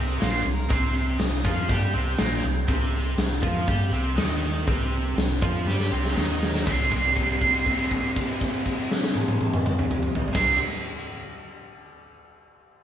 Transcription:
0.00 0.19 C2 medium
0.00 0.19 C3 medium
0.00 0.20 C4 medium
0.00 0.21 D#5 medium
0.18 0.44 A#1 medium
0.18 0.44 A#2 medium
0.18 0.45 A#3 medium
0.18 0.42 C5 medium
0.18 closed hi-hat medium
0.22 snare loud
0.44 0.68 C2 medium
0.44 0.65 C3 medium
0.44 closed hi-hat medium
0.53 0.72 A#4 medium
0.69 1.17 C2 medium
0.69 1.18 C3 medium
0.69 1.19 C4 loud
0.69 0.93 C5 medium
0.69 kick medium
0.69 closed hi-hat medium
0.94 1.01 C5 medium
0.94 closed hi-hat medium
1.17 1.43 C2 medium
1.17 1.40 C3 medium
1.17 1.51 D#5 medium
1.17 snare loud
1.17 closed hi-hat medium
1.44 1.68 F2 medium
1.44 1.68 F3 medium
1.44 1.69 F4 medium
1.44 kick medium
1.44 closed hi-hat medium
1.51 1.69 F5 medium
1.68 1.93 G2 medium
1.68 1.93 G3 medium
1.68 1.93 G4 medium
1.68 4.45 G5 medium
1.68 kick medium
1.68 closed hi-hat medium
1.93 2.17 C2 medium
1.93 2.18 C3 medium
1.93 2.18 C4 medium
1.93 closed hi-hat medium
2.18 2.42 A#1 medium
2.18 2.43 A#2 loud
2.18 2.43 A#3 loud
2.18 snare loud
2.18 closed hi-hat medium
2.43 2.67 C2 medium
2.43 2.64 C3 medium
2.43 closed hi-hat medium
2.67 3.15 C2 medium
2.67 3.16 C3 medium
2.67 3.17 C4 loud
2.67 kick medium
2.67 closed hi-hat medium
2.93 closed hi-hat medium
3.17 3.41 C2 medium
3.17 3.38 C3 medium
3.17 snare loud
3.17 closed hi-hat medium
3.42 3.66 F2 medium
3.42 3.67 F3 medium
3.42 3.67 F4 medium
3.42 kick medium
3.42 closed hi-hat medium
3.67 3.90 G2 medium
3.67 3.92 G3 medium
3.67 3.92 G4 loud
3.67 kick medium
3.67 closed hi-hat medium
3.91 4.15 C2 loud
3.91 4.16 C3 medium
3.91 4.16 C4 medium
3.91 closed hi-hat medium
4.16 4.63 D#2 medium
4.16 4.66 D#3 loud
4.16 4.66 D#4 loud
4.16 snare loud
4.16 closed hi-hat medium
4.43 6.12 F5 medium
4.43 closed hi-hat medium
4.67 5.14 C2 medium
4.67 5.16 C3 medium
4.67 5.16 C4 medium
4.67 kick medium
4.67 closed hi-hat medium
4.93 closed hi-hat medium
5.16 5.40 C2 medium
5.16 5.37 C3 medium
5.16 snare loud
5.16 closed hi-hat medium
5.42 5.65 F2 medium
5.42 5.66 F3 medium
5.42 5.67 F4 medium
5.42 kick loud
5.42 closed hi-hat medium
5.66 5.89 G2 medium
5.66 5.91 G3 medium
5.66 5.92 G4 loud
5.66 snare soft
5.80 snare medium
5.91 6.15 C2 medium
5.91 6.17 C3 medium
5.91 6.17 C4 medium
6.05 snare medium
6.16 6.63 D#2 medium
6.16 6.65 D#3 medium
6.16 6.66 D#4 loud
6.16 snare medium
6.43 snare medium
6.55 snare medium
6.65 10.25 C2 medium
6.65 10.28 C3 medium
6.65 10.29 G3 medium
6.65 10.25 C6 medium
6.65 kick medium
6.65 crash medium
6.69 10.30 C4 loud
6.92 kick medium
6.92 crash soft
7.04 crash soft
7.17 kick medium
7.17 crash soft
7.29 crash soft
7.42 kick medium
7.42 crash soft
7.54 crash soft
7.66 kick medium
7.66 crash soft
7.79 crash soft
7.91 kick medium
7.91 crash soft
8.04 crash soft
8.16 kick medium
8.16 crash soft
8.29 crash medium
8.41 kick medium
8.41 crash soft
8.54 crash soft
8.66 kick medium
8.66 crash soft
8.78 crash soft
8.91 snare medium
9.04 snare medium
9.15 high tom medium
9.28 high tom loud
9.41 high tom medium
9.53 mid tom medium
9.66 mid tom medium
9.79 mid tom loud
9.91 mid tom loud
10.03 mid tom medium
10.15 floor tom loud
10.28 floor tom medium
10.33 10.56 C2 loud
10.33 10.56 C3 loud
10.33 10.57 G3 medium
10.33 10.58 C4 medium
10.33 10.56 C6 medium
10.33 kick medium
10.33 snare loud
10.33 crash loud

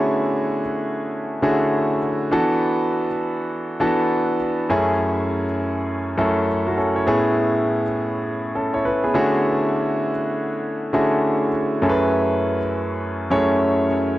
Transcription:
0.00 0.60 D3 medium
0.00 0.60 A3 medium
0.00 0.61 C#4 medium
0.00 0.61 E4 medium
0.00 0.61 F#4 medium
0.00 0.61 G#4 loud
1.42 1.98 D3 medium
1.42 1.98 A3 medium
1.42 1.98 C#4 medium
1.42 1.98 E4 medium
1.42 1.98 F#4 medium
1.42 1.98 G#4 loud
2.31 3.07 E3 medium
2.31 3.07 B3 medium
2.31 3.07 D4 medium
2.31 3.07 F#4 medium
2.31 3.07 A4 loud
3.80 4.35 E3 medium
3.80 4.35 B3 medium
3.80 4.36 D4 medium
3.80 4.36 F#4 medium
3.80 4.36 A4 loud
4.70 5.45 F#2 medium
4.70 5.45 A3 medium
4.70 5.45 C#4 medium
4.70 5.45 E4 medium
4.70 5.45 G#4 loud
6.17 6.73 F#2 medium
6.17 6.47 A3 medium
6.17 6.47 C#4 medium
6.17 6.47 E4 medium
6.17 6.48 A4 medium
6.67 6.77 A3 medium
6.67 6.77 F#4 medium
6.77 6.95 C#4 medium
6.77 6.95 A4 medium
6.96 7.06 E4 medium
6.96 7.24 C#5 medium
7.06 7.82 A2 medium
7.06 7.82 B3 medium
7.06 7.82 C#4 medium
7.06 7.82 E4 medium
7.06 7.83 G#4 loud
8.55 8.73 C#4 medium
8.55 8.73 A4 medium
8.74 8.85 E4 medium
8.74 8.84 C#5 medium
8.85 9.03 B4 medium
9.04 9.32 B3 medium
9.04 9.14 G#4 medium
9.14 10.11 D3 medium
9.14 10.11 A3 medium
9.14 10.11 C#4 medium
9.14 10.11 E4 medium
9.14 10.11 F#4 medium
9.14 10.11 G#4 loud
10.93 11.48 D3 medium
10.93 11.48 A3 medium
10.93 11.48 C#4 medium
10.93 11.49 E4 medium
10.93 11.49 F#4 medium
10.93 11.49 G#4 medium
11.82 12.57 F#2 medium
11.82 12.57 A3 medium
11.82 12.58 C#4 medium
11.82 12.58 E4 medium
11.82 12.58 G#4 medium
11.82 11.91 A4 medium
11.89 12.61 B4 loud
13.30 13.86 F#2 medium
13.30 13.86 A3 medium
13.30 13.86 C#4 medium
13.30 13.86 E4 medium
13.30 13.86 G#4 medium
13.30 13.86 C#5 loud

